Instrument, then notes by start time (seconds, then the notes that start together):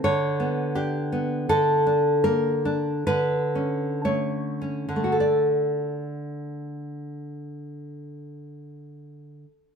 nylon-string guitar
0.04 D3 C#5
0.40 B3
0.75 D4 G4
1.12 B3
1.49 D3 A4
1.87 D4
2.24 A#3 A#4
2.65 D4
3.07 D3 B4
3.55 C#4
4.05 A3 C#5
4.61 C#4
4.89 D3
4.96 A3
5.04 F#4
5.12 A4
5.20 D5